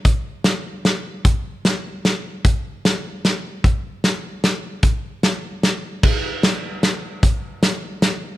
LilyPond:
\new DrumStaff \with { instrumentName = "Drums" } \drummode { \time 3/4 \tempo 4 = 151 <hh bd>4 <hh sn>4 <hh sn>4 | <hh bd>4 <hh sn>4 <hh sn>4 | <hh bd>4 <hh sn>4 <hh sn>4 | <hh bd>4 <hh sn>4 <hh sn>4 |
<hh bd>4 <hh sn>4 <hh sn>4 | <cymc bd>4 <hh sn>4 <hh sn>4 | <hh bd>4 <hh sn>4 <hh sn>4 | }